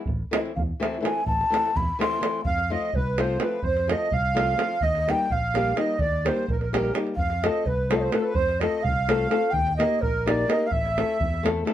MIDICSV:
0, 0, Header, 1, 6, 480
1, 0, Start_track
1, 0, Tempo, 473186
1, 64, Time_signature, 5, 3, 24, 8
1, 11905, End_track
2, 0, Start_track
2, 0, Title_t, "Ney"
2, 0, Program_c, 0, 77
2, 339, Note_on_c, 0, 75, 87
2, 400, Note_off_c, 0, 75, 0
2, 565, Note_on_c, 0, 77, 68
2, 626, Note_off_c, 0, 77, 0
2, 825, Note_on_c, 0, 76, 83
2, 1031, Note_off_c, 0, 76, 0
2, 1051, Note_on_c, 0, 80, 97
2, 1257, Note_off_c, 0, 80, 0
2, 1288, Note_on_c, 0, 81, 117
2, 1791, Note_on_c, 0, 83, 100
2, 1806, Note_off_c, 0, 81, 0
2, 2030, Note_off_c, 0, 83, 0
2, 2036, Note_on_c, 0, 84, 104
2, 2449, Note_off_c, 0, 84, 0
2, 2479, Note_on_c, 0, 77, 96
2, 2751, Note_on_c, 0, 75, 84
2, 2767, Note_off_c, 0, 77, 0
2, 2992, Note_on_c, 0, 71, 77
2, 3007, Note_off_c, 0, 75, 0
2, 3254, Note_on_c, 0, 72, 78
2, 3269, Note_off_c, 0, 71, 0
2, 3479, Note_on_c, 0, 71, 78
2, 3494, Note_off_c, 0, 72, 0
2, 3691, Note_off_c, 0, 71, 0
2, 3695, Note_on_c, 0, 72, 111
2, 3975, Note_on_c, 0, 75, 86
2, 3990, Note_off_c, 0, 72, 0
2, 4195, Note_on_c, 0, 77, 103
2, 4211, Note_off_c, 0, 75, 0
2, 4904, Note_on_c, 0, 75, 114
2, 4919, Note_off_c, 0, 77, 0
2, 5174, Note_on_c, 0, 79, 111
2, 5189, Note_off_c, 0, 75, 0
2, 5399, Note_on_c, 0, 77, 90
2, 5414, Note_off_c, 0, 79, 0
2, 5861, Note_on_c, 0, 75, 89
2, 5876, Note_off_c, 0, 77, 0
2, 6078, Note_on_c, 0, 74, 98
2, 6094, Note_off_c, 0, 75, 0
2, 6356, Note_on_c, 0, 72, 80
2, 6371, Note_off_c, 0, 74, 0
2, 6575, Note_off_c, 0, 72, 0
2, 6581, Note_on_c, 0, 70, 69
2, 6690, Note_off_c, 0, 70, 0
2, 6696, Note_on_c, 0, 70, 55
2, 6817, Note_off_c, 0, 70, 0
2, 6821, Note_on_c, 0, 70, 78
2, 7018, Note_off_c, 0, 70, 0
2, 7262, Note_on_c, 0, 77, 105
2, 7540, Note_on_c, 0, 75, 85
2, 7555, Note_off_c, 0, 77, 0
2, 7769, Note_on_c, 0, 71, 79
2, 7785, Note_off_c, 0, 75, 0
2, 8013, Note_on_c, 0, 72, 81
2, 8028, Note_off_c, 0, 71, 0
2, 8075, Note_on_c, 0, 75, 76
2, 8090, Note_off_c, 0, 72, 0
2, 8128, Note_on_c, 0, 72, 91
2, 8143, Note_off_c, 0, 75, 0
2, 8238, Note_on_c, 0, 71, 75
2, 8253, Note_off_c, 0, 72, 0
2, 8311, Note_on_c, 0, 69, 67
2, 8326, Note_off_c, 0, 71, 0
2, 8348, Note_on_c, 0, 71, 77
2, 8363, Note_off_c, 0, 69, 0
2, 8447, Note_off_c, 0, 71, 0
2, 8453, Note_on_c, 0, 72, 112
2, 8727, Note_on_c, 0, 75, 94
2, 8742, Note_off_c, 0, 72, 0
2, 8952, Note_on_c, 0, 77, 97
2, 8967, Note_off_c, 0, 75, 0
2, 9643, Note_on_c, 0, 79, 121
2, 9658, Note_off_c, 0, 77, 0
2, 9900, Note_off_c, 0, 79, 0
2, 9906, Note_on_c, 0, 75, 95
2, 10159, Note_on_c, 0, 70, 93
2, 10174, Note_off_c, 0, 75, 0
2, 10420, Note_on_c, 0, 74, 102
2, 10435, Note_off_c, 0, 70, 0
2, 10651, Note_on_c, 0, 75, 95
2, 10666, Note_off_c, 0, 74, 0
2, 10824, Note_on_c, 0, 77, 64
2, 10840, Note_off_c, 0, 75, 0
2, 10878, Note_on_c, 0, 76, 112
2, 10893, Note_off_c, 0, 77, 0
2, 11619, Note_off_c, 0, 76, 0
2, 11905, End_track
3, 0, Start_track
3, 0, Title_t, "Accordion"
3, 0, Program_c, 1, 21
3, 2500, Note_on_c, 1, 77, 93
3, 2740, Note_off_c, 1, 77, 0
3, 2758, Note_on_c, 1, 75, 73
3, 2982, Note_off_c, 1, 75, 0
3, 2997, Note_on_c, 1, 71, 76
3, 3239, Note_off_c, 1, 71, 0
3, 3250, Note_on_c, 1, 72, 68
3, 3463, Note_on_c, 1, 71, 60
3, 3464, Note_off_c, 1, 72, 0
3, 3683, Note_off_c, 1, 71, 0
3, 3683, Note_on_c, 1, 72, 77
3, 3932, Note_off_c, 1, 72, 0
3, 3969, Note_on_c, 1, 75, 81
3, 4183, Note_on_c, 1, 77, 100
3, 4189, Note_off_c, 1, 75, 0
3, 4883, Note_off_c, 1, 77, 0
3, 4888, Note_on_c, 1, 75, 91
3, 5155, Note_off_c, 1, 75, 0
3, 5156, Note_on_c, 1, 79, 86
3, 5384, Note_off_c, 1, 79, 0
3, 5388, Note_on_c, 1, 77, 97
3, 5858, Note_on_c, 1, 75, 79
3, 5861, Note_off_c, 1, 77, 0
3, 6082, Note_off_c, 1, 75, 0
3, 6092, Note_on_c, 1, 74, 81
3, 6357, Note_off_c, 1, 74, 0
3, 6369, Note_on_c, 1, 72, 70
3, 6590, Note_off_c, 1, 72, 0
3, 6614, Note_on_c, 1, 70, 72
3, 6696, Note_off_c, 1, 70, 0
3, 6711, Note_on_c, 1, 70, 51
3, 6816, Note_off_c, 1, 70, 0
3, 6850, Note_on_c, 1, 70, 59
3, 7033, Note_off_c, 1, 70, 0
3, 7288, Note_on_c, 1, 77, 87
3, 7535, Note_off_c, 1, 77, 0
3, 7579, Note_on_c, 1, 75, 75
3, 7781, Note_on_c, 1, 71, 68
3, 7794, Note_off_c, 1, 75, 0
3, 8032, Note_off_c, 1, 71, 0
3, 8032, Note_on_c, 1, 72, 55
3, 8088, Note_off_c, 1, 72, 0
3, 8096, Note_on_c, 1, 75, 52
3, 8142, Note_on_c, 1, 72, 68
3, 8147, Note_off_c, 1, 75, 0
3, 8252, Note_on_c, 1, 71, 68
3, 8254, Note_off_c, 1, 72, 0
3, 8305, Note_on_c, 1, 69, 57
3, 8309, Note_off_c, 1, 71, 0
3, 8347, Note_on_c, 1, 71, 67
3, 8364, Note_off_c, 1, 69, 0
3, 8459, Note_on_c, 1, 72, 94
3, 8469, Note_off_c, 1, 71, 0
3, 8718, Note_off_c, 1, 72, 0
3, 8722, Note_on_c, 1, 75, 81
3, 8956, Note_on_c, 1, 77, 97
3, 8964, Note_off_c, 1, 75, 0
3, 9654, Note_on_c, 1, 79, 97
3, 9663, Note_off_c, 1, 77, 0
3, 9919, Note_on_c, 1, 75, 79
3, 9932, Note_off_c, 1, 79, 0
3, 10142, Note_off_c, 1, 75, 0
3, 10157, Note_on_c, 1, 70, 85
3, 10406, Note_on_c, 1, 74, 72
3, 10414, Note_off_c, 1, 70, 0
3, 10624, Note_on_c, 1, 75, 74
3, 10636, Note_off_c, 1, 74, 0
3, 10792, Note_off_c, 1, 75, 0
3, 10802, Note_on_c, 1, 77, 51
3, 10859, Note_on_c, 1, 76, 90
3, 10867, Note_off_c, 1, 77, 0
3, 11610, Note_off_c, 1, 76, 0
3, 11905, End_track
4, 0, Start_track
4, 0, Title_t, "Nylon-string guitar"
4, 0, Program_c, 2, 24
4, 316, Note_on_c, 2, 52, 68
4, 320, Note_on_c, 2, 57, 57
4, 327, Note_on_c, 2, 60, 57
4, 334, Note_on_c, 2, 64, 72
4, 515, Note_off_c, 2, 52, 0
4, 518, Note_off_c, 2, 57, 0
4, 519, Note_off_c, 2, 60, 0
4, 524, Note_off_c, 2, 64, 0
4, 809, Note_on_c, 2, 52, 80
4, 812, Note_on_c, 2, 57, 79
4, 821, Note_on_c, 2, 60, 71
4, 832, Note_on_c, 2, 64, 82
4, 999, Note_off_c, 2, 52, 0
4, 1000, Note_off_c, 2, 57, 0
4, 1005, Note_off_c, 2, 60, 0
4, 1010, Note_off_c, 2, 64, 0
4, 1019, Note_on_c, 2, 52, 61
4, 1031, Note_on_c, 2, 57, 54
4, 1038, Note_on_c, 2, 60, 62
4, 1040, Note_on_c, 2, 64, 66
4, 1216, Note_off_c, 2, 52, 0
4, 1223, Note_off_c, 2, 57, 0
4, 1224, Note_off_c, 2, 60, 0
4, 1227, Note_off_c, 2, 64, 0
4, 1525, Note_on_c, 2, 52, 68
4, 1538, Note_on_c, 2, 57, 70
4, 1538, Note_on_c, 2, 60, 57
4, 1552, Note_on_c, 2, 64, 77
4, 1722, Note_off_c, 2, 52, 0
4, 1729, Note_off_c, 2, 57, 0
4, 1729, Note_off_c, 2, 60, 0
4, 1736, Note_off_c, 2, 64, 0
4, 2016, Note_on_c, 2, 52, 82
4, 2024, Note_on_c, 2, 57, 72
4, 2030, Note_on_c, 2, 60, 75
4, 2039, Note_on_c, 2, 64, 80
4, 2205, Note_off_c, 2, 52, 0
4, 2207, Note_off_c, 2, 57, 0
4, 2212, Note_off_c, 2, 60, 0
4, 2216, Note_off_c, 2, 64, 0
4, 2237, Note_on_c, 2, 52, 66
4, 2245, Note_on_c, 2, 57, 67
4, 2252, Note_on_c, 2, 60, 57
4, 2258, Note_on_c, 2, 64, 67
4, 2428, Note_off_c, 2, 52, 0
4, 2432, Note_off_c, 2, 57, 0
4, 2435, Note_off_c, 2, 60, 0
4, 2438, Note_off_c, 2, 64, 0
4, 2741, Note_on_c, 2, 53, 69
4, 2748, Note_on_c, 2, 57, 60
4, 2748, Note_on_c, 2, 60, 57
4, 2754, Note_on_c, 2, 65, 72
4, 2933, Note_off_c, 2, 53, 0
4, 2934, Note_off_c, 2, 57, 0
4, 2936, Note_off_c, 2, 60, 0
4, 2939, Note_off_c, 2, 65, 0
4, 3226, Note_on_c, 2, 53, 71
4, 3229, Note_on_c, 2, 57, 66
4, 3234, Note_on_c, 2, 60, 59
4, 3241, Note_on_c, 2, 65, 78
4, 3412, Note_off_c, 2, 53, 0
4, 3412, Note_off_c, 2, 57, 0
4, 3416, Note_off_c, 2, 60, 0
4, 3419, Note_off_c, 2, 65, 0
4, 3443, Note_on_c, 2, 53, 60
4, 3451, Note_on_c, 2, 57, 56
4, 3456, Note_on_c, 2, 60, 62
4, 3465, Note_on_c, 2, 65, 57
4, 3633, Note_off_c, 2, 53, 0
4, 3637, Note_off_c, 2, 57, 0
4, 3639, Note_off_c, 2, 60, 0
4, 3644, Note_off_c, 2, 65, 0
4, 3932, Note_on_c, 2, 53, 66
4, 3940, Note_on_c, 2, 57, 62
4, 3946, Note_on_c, 2, 60, 55
4, 3948, Note_on_c, 2, 65, 71
4, 4130, Note_off_c, 2, 53, 0
4, 4134, Note_off_c, 2, 57, 0
4, 4136, Note_off_c, 2, 60, 0
4, 4137, Note_off_c, 2, 65, 0
4, 4410, Note_on_c, 2, 53, 70
4, 4417, Note_on_c, 2, 57, 62
4, 4423, Note_on_c, 2, 65, 76
4, 4424, Note_on_c, 2, 60, 67
4, 4605, Note_off_c, 2, 53, 0
4, 4609, Note_off_c, 2, 57, 0
4, 4611, Note_off_c, 2, 65, 0
4, 4613, Note_off_c, 2, 60, 0
4, 4636, Note_on_c, 2, 57, 54
4, 4641, Note_on_c, 2, 53, 65
4, 4653, Note_on_c, 2, 60, 55
4, 4657, Note_on_c, 2, 65, 64
4, 4830, Note_off_c, 2, 57, 0
4, 4833, Note_off_c, 2, 53, 0
4, 4840, Note_off_c, 2, 60, 0
4, 4841, Note_off_c, 2, 65, 0
4, 5148, Note_on_c, 2, 55, 60
4, 5155, Note_on_c, 2, 58, 53
4, 5159, Note_on_c, 2, 63, 60
4, 5168, Note_on_c, 2, 67, 61
4, 5339, Note_off_c, 2, 55, 0
4, 5342, Note_off_c, 2, 58, 0
4, 5343, Note_off_c, 2, 63, 0
4, 5349, Note_off_c, 2, 67, 0
4, 5618, Note_on_c, 2, 55, 68
4, 5630, Note_on_c, 2, 58, 58
4, 5637, Note_on_c, 2, 63, 67
4, 5644, Note_on_c, 2, 67, 83
4, 5810, Note_off_c, 2, 55, 0
4, 5816, Note_off_c, 2, 58, 0
4, 5820, Note_off_c, 2, 63, 0
4, 5823, Note_off_c, 2, 67, 0
4, 5841, Note_on_c, 2, 55, 57
4, 5845, Note_on_c, 2, 58, 52
4, 5849, Note_on_c, 2, 63, 56
4, 5858, Note_on_c, 2, 67, 56
4, 6034, Note_off_c, 2, 55, 0
4, 6034, Note_off_c, 2, 58, 0
4, 6038, Note_off_c, 2, 63, 0
4, 6042, Note_off_c, 2, 67, 0
4, 6336, Note_on_c, 2, 55, 61
4, 6342, Note_on_c, 2, 58, 61
4, 6344, Note_on_c, 2, 63, 58
4, 6353, Note_on_c, 2, 67, 67
4, 6534, Note_off_c, 2, 55, 0
4, 6534, Note_off_c, 2, 63, 0
4, 6535, Note_off_c, 2, 58, 0
4, 6541, Note_off_c, 2, 67, 0
4, 6826, Note_on_c, 2, 55, 74
4, 6839, Note_on_c, 2, 58, 67
4, 6843, Note_on_c, 2, 67, 83
4, 6847, Note_on_c, 2, 63, 62
4, 7013, Note_off_c, 2, 55, 0
4, 7021, Note_off_c, 2, 58, 0
4, 7021, Note_off_c, 2, 67, 0
4, 7024, Note_off_c, 2, 63, 0
4, 7035, Note_on_c, 2, 55, 64
4, 7043, Note_on_c, 2, 58, 51
4, 7050, Note_on_c, 2, 63, 48
4, 7055, Note_on_c, 2, 67, 61
4, 7231, Note_off_c, 2, 55, 0
4, 7233, Note_off_c, 2, 58, 0
4, 7237, Note_off_c, 2, 63, 0
4, 7240, Note_off_c, 2, 67, 0
4, 7541, Note_on_c, 2, 57, 60
4, 7544, Note_on_c, 2, 60, 58
4, 7546, Note_on_c, 2, 65, 58
4, 7560, Note_on_c, 2, 69, 70
4, 7735, Note_off_c, 2, 57, 0
4, 7735, Note_off_c, 2, 60, 0
4, 7737, Note_off_c, 2, 65, 0
4, 7744, Note_off_c, 2, 69, 0
4, 8014, Note_on_c, 2, 57, 62
4, 8019, Note_on_c, 2, 60, 70
4, 8025, Note_on_c, 2, 65, 68
4, 8030, Note_on_c, 2, 69, 79
4, 8206, Note_off_c, 2, 57, 0
4, 8209, Note_off_c, 2, 60, 0
4, 8210, Note_off_c, 2, 65, 0
4, 8214, Note_off_c, 2, 69, 0
4, 8246, Note_on_c, 2, 57, 56
4, 8253, Note_on_c, 2, 60, 52
4, 8255, Note_on_c, 2, 65, 54
4, 8264, Note_on_c, 2, 69, 65
4, 8434, Note_off_c, 2, 57, 0
4, 8437, Note_off_c, 2, 60, 0
4, 8437, Note_off_c, 2, 65, 0
4, 8443, Note_off_c, 2, 69, 0
4, 8726, Note_on_c, 2, 57, 68
4, 8739, Note_on_c, 2, 60, 54
4, 8744, Note_on_c, 2, 65, 52
4, 8750, Note_on_c, 2, 69, 70
4, 8925, Note_off_c, 2, 57, 0
4, 8931, Note_off_c, 2, 60, 0
4, 8934, Note_off_c, 2, 65, 0
4, 8936, Note_off_c, 2, 69, 0
4, 9214, Note_on_c, 2, 57, 77
4, 9219, Note_on_c, 2, 60, 69
4, 9229, Note_on_c, 2, 65, 70
4, 9234, Note_on_c, 2, 69, 84
4, 9404, Note_off_c, 2, 57, 0
4, 9406, Note_off_c, 2, 60, 0
4, 9412, Note_off_c, 2, 65, 0
4, 9413, Note_off_c, 2, 69, 0
4, 9438, Note_on_c, 2, 57, 59
4, 9440, Note_on_c, 2, 60, 60
4, 9449, Note_on_c, 2, 69, 64
4, 9450, Note_on_c, 2, 65, 58
4, 9628, Note_off_c, 2, 57, 0
4, 9628, Note_off_c, 2, 60, 0
4, 9632, Note_off_c, 2, 69, 0
4, 9633, Note_off_c, 2, 65, 0
4, 9928, Note_on_c, 2, 58, 68
4, 9934, Note_on_c, 2, 63, 56
4, 9937, Note_on_c, 2, 67, 57
4, 9946, Note_on_c, 2, 70, 68
4, 10123, Note_off_c, 2, 58, 0
4, 10125, Note_off_c, 2, 63, 0
4, 10127, Note_off_c, 2, 67, 0
4, 10132, Note_off_c, 2, 70, 0
4, 10406, Note_on_c, 2, 58, 72
4, 10413, Note_on_c, 2, 63, 66
4, 10421, Note_on_c, 2, 67, 72
4, 10427, Note_on_c, 2, 70, 80
4, 10597, Note_off_c, 2, 58, 0
4, 10600, Note_off_c, 2, 63, 0
4, 10604, Note_off_c, 2, 67, 0
4, 10607, Note_off_c, 2, 70, 0
4, 10626, Note_on_c, 2, 58, 59
4, 10631, Note_on_c, 2, 63, 57
4, 10639, Note_on_c, 2, 67, 53
4, 10650, Note_on_c, 2, 70, 62
4, 10818, Note_off_c, 2, 58, 0
4, 10820, Note_off_c, 2, 63, 0
4, 10825, Note_off_c, 2, 67, 0
4, 10830, Note_off_c, 2, 70, 0
4, 11132, Note_on_c, 2, 57, 58
4, 11134, Note_on_c, 2, 60, 59
4, 11140, Note_on_c, 2, 64, 54
4, 11150, Note_on_c, 2, 69, 67
4, 11321, Note_off_c, 2, 57, 0
4, 11322, Note_off_c, 2, 60, 0
4, 11325, Note_off_c, 2, 64, 0
4, 11330, Note_off_c, 2, 69, 0
4, 11595, Note_on_c, 2, 57, 73
4, 11603, Note_on_c, 2, 60, 69
4, 11610, Note_on_c, 2, 64, 74
4, 11615, Note_on_c, 2, 69, 96
4, 11787, Note_off_c, 2, 57, 0
4, 11791, Note_off_c, 2, 60, 0
4, 11795, Note_off_c, 2, 64, 0
4, 11795, Note_off_c, 2, 69, 0
4, 11817, Note_on_c, 2, 57, 75
4, 11829, Note_on_c, 2, 60, 70
4, 11835, Note_on_c, 2, 64, 62
4, 11841, Note_on_c, 2, 69, 77
4, 11905, Note_off_c, 2, 57, 0
4, 11905, Note_off_c, 2, 60, 0
4, 11905, Note_off_c, 2, 64, 0
4, 11905, Note_off_c, 2, 69, 0
4, 11905, End_track
5, 0, Start_track
5, 0, Title_t, "Fingered electric bass"
5, 0, Program_c, 3, 33
5, 72, Note_on_c, 3, 33, 83
5, 232, Note_off_c, 3, 33, 0
5, 574, Note_on_c, 3, 40, 76
5, 723, Note_off_c, 3, 40, 0
5, 1282, Note_on_c, 3, 33, 90
5, 1441, Note_off_c, 3, 33, 0
5, 1783, Note_on_c, 3, 40, 82
5, 1931, Note_off_c, 3, 40, 0
5, 2488, Note_on_c, 3, 41, 73
5, 2785, Note_off_c, 3, 41, 0
5, 2992, Note_on_c, 3, 36, 88
5, 3409, Note_off_c, 3, 36, 0
5, 3694, Note_on_c, 3, 41, 90
5, 3990, Note_off_c, 3, 41, 0
5, 4180, Note_on_c, 3, 36, 95
5, 4601, Note_off_c, 3, 36, 0
5, 4887, Note_on_c, 3, 39, 83
5, 5186, Note_off_c, 3, 39, 0
5, 5380, Note_on_c, 3, 34, 86
5, 5801, Note_off_c, 3, 34, 0
5, 6079, Note_on_c, 3, 39, 78
5, 6380, Note_off_c, 3, 39, 0
5, 6578, Note_on_c, 3, 34, 85
5, 6999, Note_off_c, 3, 34, 0
5, 7282, Note_on_c, 3, 41, 84
5, 7581, Note_off_c, 3, 41, 0
5, 7775, Note_on_c, 3, 36, 87
5, 8196, Note_off_c, 3, 36, 0
5, 8474, Note_on_c, 3, 41, 77
5, 8774, Note_off_c, 3, 41, 0
5, 8971, Note_on_c, 3, 36, 91
5, 9391, Note_off_c, 3, 36, 0
5, 9669, Note_on_c, 3, 39, 88
5, 9969, Note_off_c, 3, 39, 0
5, 10174, Note_on_c, 3, 34, 97
5, 10590, Note_off_c, 3, 34, 0
5, 10876, Note_on_c, 3, 33, 91
5, 11171, Note_off_c, 3, 33, 0
5, 11370, Note_on_c, 3, 40, 88
5, 11785, Note_off_c, 3, 40, 0
5, 11905, End_track
6, 0, Start_track
6, 0, Title_t, "Davul"
6, 59, Note_on_c, 9, 43, 98
6, 160, Note_off_c, 9, 43, 0
6, 335, Note_on_c, 9, 37, 91
6, 436, Note_off_c, 9, 37, 0
6, 463, Note_on_c, 9, 37, 33
6, 564, Note_off_c, 9, 37, 0
6, 576, Note_on_c, 9, 43, 100
6, 678, Note_off_c, 9, 43, 0
6, 839, Note_on_c, 9, 37, 72
6, 940, Note_off_c, 9, 37, 0
6, 959, Note_on_c, 9, 37, 24
6, 1061, Note_off_c, 9, 37, 0
6, 1066, Note_on_c, 9, 37, 69
6, 1168, Note_off_c, 9, 37, 0
6, 1291, Note_on_c, 9, 43, 81
6, 1393, Note_off_c, 9, 43, 0
6, 1431, Note_on_c, 9, 37, 30
6, 1532, Note_off_c, 9, 37, 0
6, 1561, Note_on_c, 9, 37, 69
6, 1662, Note_off_c, 9, 37, 0
6, 1679, Note_on_c, 9, 37, 27
6, 1781, Note_off_c, 9, 37, 0
6, 1793, Note_on_c, 9, 43, 90
6, 1894, Note_off_c, 9, 43, 0
6, 2042, Note_on_c, 9, 37, 78
6, 2144, Note_off_c, 9, 37, 0
6, 2159, Note_on_c, 9, 37, 26
6, 2261, Note_off_c, 9, 37, 0
6, 2261, Note_on_c, 9, 37, 74
6, 2362, Note_off_c, 9, 37, 0
6, 2484, Note_on_c, 9, 43, 85
6, 2586, Note_off_c, 9, 43, 0
6, 2614, Note_on_c, 9, 37, 26
6, 2715, Note_off_c, 9, 37, 0
6, 2977, Note_on_c, 9, 43, 98
6, 3079, Note_off_c, 9, 43, 0
6, 3226, Note_on_c, 9, 37, 72
6, 3328, Note_off_c, 9, 37, 0
6, 3448, Note_on_c, 9, 37, 74
6, 3549, Note_off_c, 9, 37, 0
6, 3679, Note_on_c, 9, 43, 75
6, 3780, Note_off_c, 9, 43, 0
6, 3821, Note_on_c, 9, 37, 31
6, 3923, Note_off_c, 9, 37, 0
6, 3951, Note_on_c, 9, 37, 80
6, 4052, Note_off_c, 9, 37, 0
6, 4175, Note_on_c, 9, 43, 75
6, 4276, Note_off_c, 9, 43, 0
6, 4430, Note_on_c, 9, 37, 82
6, 4532, Note_off_c, 9, 37, 0
6, 4656, Note_on_c, 9, 37, 71
6, 4757, Note_off_c, 9, 37, 0
6, 4879, Note_on_c, 9, 43, 97
6, 4981, Note_off_c, 9, 43, 0
6, 5022, Note_on_c, 9, 37, 33
6, 5124, Note_off_c, 9, 37, 0
6, 5160, Note_on_c, 9, 37, 72
6, 5261, Note_off_c, 9, 37, 0
6, 5382, Note_on_c, 9, 43, 80
6, 5484, Note_off_c, 9, 43, 0
6, 5630, Note_on_c, 9, 37, 75
6, 5732, Note_off_c, 9, 37, 0
6, 5854, Note_on_c, 9, 37, 66
6, 5956, Note_off_c, 9, 37, 0
6, 6076, Note_on_c, 9, 43, 97
6, 6177, Note_off_c, 9, 43, 0
6, 6349, Note_on_c, 9, 37, 74
6, 6450, Note_off_c, 9, 37, 0
6, 6459, Note_on_c, 9, 37, 32
6, 6560, Note_off_c, 9, 37, 0
6, 6578, Note_on_c, 9, 43, 93
6, 6680, Note_off_c, 9, 43, 0
6, 6706, Note_on_c, 9, 37, 28
6, 6808, Note_off_c, 9, 37, 0
6, 6838, Note_on_c, 9, 37, 87
6, 6939, Note_off_c, 9, 37, 0
6, 6947, Note_on_c, 9, 37, 29
6, 7048, Note_off_c, 9, 37, 0
6, 7050, Note_on_c, 9, 37, 76
6, 7152, Note_off_c, 9, 37, 0
6, 7169, Note_on_c, 9, 37, 23
6, 7271, Note_off_c, 9, 37, 0
6, 7273, Note_on_c, 9, 43, 82
6, 7374, Note_off_c, 9, 43, 0
6, 7405, Note_on_c, 9, 37, 27
6, 7507, Note_off_c, 9, 37, 0
6, 7545, Note_on_c, 9, 37, 82
6, 7646, Note_off_c, 9, 37, 0
6, 7768, Note_on_c, 9, 43, 82
6, 7870, Note_off_c, 9, 43, 0
6, 8021, Note_on_c, 9, 37, 83
6, 8122, Note_off_c, 9, 37, 0
6, 8241, Note_on_c, 9, 37, 79
6, 8343, Note_off_c, 9, 37, 0
6, 8469, Note_on_c, 9, 43, 98
6, 8570, Note_off_c, 9, 43, 0
6, 8608, Note_on_c, 9, 37, 29
6, 8709, Note_off_c, 9, 37, 0
6, 8737, Note_on_c, 9, 37, 72
6, 8839, Note_off_c, 9, 37, 0
6, 8976, Note_on_c, 9, 43, 96
6, 9078, Note_off_c, 9, 43, 0
6, 9220, Note_on_c, 9, 37, 80
6, 9321, Note_off_c, 9, 37, 0
6, 9446, Note_on_c, 9, 37, 64
6, 9547, Note_off_c, 9, 37, 0
6, 9670, Note_on_c, 9, 43, 87
6, 9772, Note_off_c, 9, 43, 0
6, 9807, Note_on_c, 9, 37, 24
6, 9908, Note_off_c, 9, 37, 0
6, 9941, Note_on_c, 9, 37, 77
6, 10042, Note_off_c, 9, 37, 0
6, 10170, Note_on_c, 9, 43, 93
6, 10271, Note_off_c, 9, 43, 0
6, 10423, Note_on_c, 9, 37, 73
6, 10525, Note_off_c, 9, 37, 0
6, 10648, Note_on_c, 9, 37, 72
6, 10749, Note_off_c, 9, 37, 0
6, 10870, Note_on_c, 9, 43, 93
6, 10971, Note_off_c, 9, 43, 0
6, 11013, Note_on_c, 9, 37, 27
6, 11114, Note_off_c, 9, 37, 0
6, 11137, Note_on_c, 9, 37, 70
6, 11238, Note_off_c, 9, 37, 0
6, 11365, Note_on_c, 9, 43, 87
6, 11467, Note_off_c, 9, 43, 0
6, 11498, Note_on_c, 9, 37, 23
6, 11599, Note_off_c, 9, 37, 0
6, 11622, Note_on_c, 9, 37, 77
6, 11723, Note_off_c, 9, 37, 0
6, 11740, Note_on_c, 9, 37, 25
6, 11841, Note_off_c, 9, 37, 0
6, 11842, Note_on_c, 9, 37, 66
6, 11905, Note_off_c, 9, 37, 0
6, 11905, End_track
0, 0, End_of_file